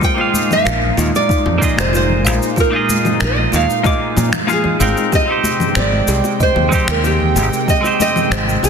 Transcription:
0.00 5.09 A#2 medium
0.00 0.15 G#3 medium
0.00 5.09 G#3 medium
0.00 0.13 A#3 medium
0.00 0.14 D#4 medium
0.00 5.09 D#4 medium
0.00 0.15 F4 medium
0.00 0.31 F4 medium
0.00 0.15 D6 medium
0.00 kick loud
0.00 cabasa soft
0.04 0.52 G5 loud
0.15 1.56 A#3 medium
0.15 1.57 D#4 medium
0.15 1.58 F4 medium
0.15 high bongo medium
0.20 1.59 G#4 medium
0.20 1.59 F5 medium
0.34 high conga medium
0.34 cabasa medium
0.51 1.02 F5 loud
0.51 low conga medium
0.51 cabasa soft
0.65 0.90 A#1 loud
0.65 0.95 A#4 medium
0.65 finger snap medium
0.65 high bongo medium
0.65 cabasa soft
0.82 high conga medium
0.97 1.10 D#2 loud
0.97 1.28 F4 medium
0.97 high bongo soft
0.97 cabasa medium
1.02 1.16 D#5 loud
1.15 1.81 D5 loud
1.15 cabasa soft
1.29 1.60 D#4 medium
1.29 kick loud
1.29 high conga medium
1.29 cabasa soft
1.46 1.58 F2 medium
1.46 high bongo medium
1.46 low conga medium
1.58 2.68 A#3 medium
1.58 2.69 D#4 medium
1.58 2.70 F4 medium
1.58 kick loud
1.62 2.71 G#4 medium
1.62 2.71 D#5 medium
1.62 cabasa medium
1.77 2.26 F1 medium
1.77 1.95 C5 medium
1.77 finger snap medium
1.77 high bongo medium
1.77 high conga medium
1.77 cabasa soft
1.93 2.22 F4 medium
1.93 2.60 C5 loud
1.93 cabasa soft
2.10 low conga medium
2.25 2.38 A#1 medium
2.25 2.54 F5 medium
2.25 high bongo medium
2.25 high conga medium
2.25 cabasa medium
2.42 cabasa soft
2.56 2.86 F4 medium
2.56 3.25 A#4 loud
2.56 kick loud
2.56 high bongo medium
2.56 cabasa soft
2.70 3.80 A#3 medium
2.70 3.80 D#4 medium
2.70 3.81 F4 medium
2.75 3.82 G#4 medium
2.75 3.83 D#5 medium
2.89 high conga medium
2.89 cabasa medium
3.05 high bongo medium
3.05 low conga medium
3.05 cabasa soft
3.20 3.45 A#1 medium
3.20 3.50 A#4 medium
3.20 finger snap medium
3.20 cabasa soft
3.24 3.55 D#5 loud
3.37 high bongo soft
3.37 high conga medium
3.52 3.65 D#2 loud
3.52 3.83 F4 medium
3.52 4.53 F5 loud
3.52 cabasa medium
3.70 cabasa soft
3.83 4.29 A#3 medium
3.83 4.29 D#4 medium
3.83 4.29 F4 medium
3.83 4.30 G#4 medium
3.83 4.15 D#5 medium
3.83 4.30 D6 loud
3.83 kick loud
3.83 high bongo medium
3.83 high conga loud
3.83 cabasa soft
4.16 4.29 A#2 loud
4.16 high bongo medium
4.16 low conga medium
4.16 cabasa medium
4.32 finger snap medium
4.32 high conga medium
4.32 low conga medium
4.32 cabasa soft
4.47 4.76 A#3 medium
4.47 4.77 D#4 medium
4.47 4.78 F4 medium
4.47 4.77 F4 medium
4.47 4.77 G#4 medium
4.47 4.78 F5 medium
4.47 cabasa soft
4.53 5.17 G#4 medium
4.64 high bongo medium
4.64 low conga medium
4.79 4.93 G#1 medium
4.79 5.24 G#3 medium
4.79 5.25 C4 medium
4.79 5.25 D#4 medium
4.79 5.26 A#4 loud
4.79 5.09 F5 medium
4.79 5.26 G5 medium
4.79 high conga medium
4.79 cabasa medium
4.97 high bongo soft
4.97 cabasa soft
5.12 8.69 C3 medium
5.12 8.69 G#3 medium
5.12 5.41 G4 medium
5.12 5.78 D#5 loud
5.12 8.69 G5 medium
5.12 kick loud
5.12 cabasa soft
5.26 6.67 G#3 medium
5.26 6.68 C4 medium
5.26 6.69 D#4 medium
5.30 6.69 G4 medium
5.30 6.70 C5 medium
5.44 high bongo medium
5.44 high conga loud
5.44 cabasa medium
5.60 low conga medium
5.60 cabasa soft
5.75 6.00 G#1 loud
5.75 6.05 C5 medium
5.75 6.42 D5 medium
5.75 finger snap medium
5.75 high bongo medium
5.75 cabasa soft
5.92 high conga medium
6.08 6.20 C2 loud
6.08 6.39 G4 medium
6.08 cabasa medium
6.24 high bongo medium
6.24 cabasa soft
6.40 6.91 C5 medium
6.40 6.71 D#5 medium
6.40 kick loud
6.40 high conga loud
6.40 cabasa soft
6.56 6.68 D#2 medium
6.56 high bongo medium
6.56 low conga medium
6.69 7.79 G#3 medium
6.69 7.80 C4 medium
6.69 7.80 D#4 medium
6.69 kick loud
6.69 cabasa medium
6.73 7.81 G4 medium
6.73 7.82 C5 medium
6.87 7.37 D#2 medium
6.87 7.06 A#4 medium
6.87 finger snap medium
6.87 high conga medium
6.87 cabasa soft
7.04 7.33 G4 medium
7.04 7.71 G4 medium
7.04 high bongo medium
7.04 cabasa soft
7.20 low conga medium
7.35 7.48 G#1 medium
7.35 7.65 G5 medium
7.35 high bongo medium
7.35 high conga medium
7.35 cabasa medium
7.53 cabasa soft
7.68 7.97 G4 medium
7.68 7.99 D#5 loud
7.68 kick loud
7.68 cabasa soft
7.81 8.69 G#3 medium
7.81 8.69 C4 medium
7.81 8.69 D#4 medium
7.81 high bongo medium
7.85 8.69 G4 medium
7.85 8.69 C5 medium
7.85 cabasa soft
8.00 8.67 D#5 loud
8.00 high conga loud
8.00 cabasa medium
8.16 high bongo medium
8.16 low conga medium
8.16 cabasa soft
8.31 8.56 G#1 loud
8.31 8.61 C5 medium
8.31 finger snap medium
8.31 cabasa soft
8.48 high conga medium
8.48 cabasa soft
8.63 8.69 C2 loud
8.63 8.69 G#4 medium
8.63 8.69 G5 medium
8.63 high bongo medium
8.63 cabasa medium

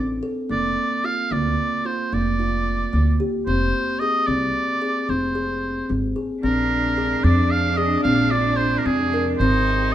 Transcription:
0.00 0.20 A1 medium
0.00 0.18 C4 medium
0.00 0.20 D5 medium
0.23 0.45 A4 medium
0.49 0.74 F1 medium
0.49 0.93 A#3 medium
0.49 1.07 D5 medium
1.04 1.26 F4 medium
1.04 1.34 F5 medium
1.31 1.55 D2 medium
1.31 1.75 A#3 medium
1.31 1.87 D5 medium
1.85 2.07 F4 medium
1.85 2.15 C5 medium
2.13 2.83 F1 medium
2.13 2.34 A#3 medium
2.13 3.21 D5 medium
2.40 2.83 F4 medium
2.93 3.17 D2 medium
2.93 3.15 A#3 medium
3.20 3.42 G4 medium
3.47 3.70 F1 medium
3.47 3.91 C4 medium
3.47 4.01 C5 medium
4.00 4.23 G#4 medium
4.00 4.28 D#5 medium
4.27 4.51 C2 medium
4.27 4.71 C4 medium
4.27 5.11 D5 medium
4.82 5.03 G#4 medium
5.09 5.80 F1 medium
5.09 5.30 C4 medium
5.09 5.90 C5 medium
5.35 5.79 G#4 medium
5.90 6.13 G#1 medium
5.90 6.11 C4 medium
6.16 6.38 G#4 medium
6.42 7.14 A#1 medium
6.42 9.95 C3 medium
6.42 9.95 G#3 medium
6.42 6.87 C4 medium
6.42 9.42 D4 medium
6.42 9.38 D4 medium
6.42 7.25 A#4 medium
6.97 7.19 G#4 medium
7.24 7.95 F2 medium
7.24 7.68 C4 medium
7.24 7.53 D5 medium
7.52 7.78 F5 medium
7.77 8.00 G#4 medium
7.77 8.03 D#5 medium
8.03 8.76 A#1 medium
8.03 8.27 C4 medium
8.03 8.33 F5 medium
8.31 8.75 F4 medium
8.31 8.58 D5 medium
8.56 8.80 C5 medium
8.78 8.87 A#4 medium
8.86 9.33 F2 medium
8.86 9.08 C4 medium
8.86 9.26 G#4 medium
9.14 9.35 A#4 medium
9.39 9.95 G#1 medium
9.39 9.84 C4 medium
9.39 9.95 D#4 medium
9.39 9.95 G4 medium
9.39 9.94 C5 medium

